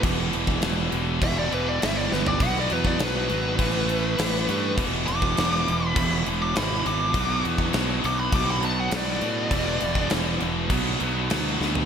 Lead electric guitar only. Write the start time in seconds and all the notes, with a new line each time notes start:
1.24 E5
1.38 D5
1.54 B4
1.69 D5
1.82 E5
1.96 D5
2.13 B4
2.27 D5
2.43 F#5
2.60 D5
2.73 B4
2.87 D5
3.03 B4
5.07 D6
5.89 B5
6.42 D6
6.57 B5
6.87 D6
8.06 D6
8.20 B5
8.34 D6
8.51 B5
8.65 A5
8.80 F#5
8.97 D5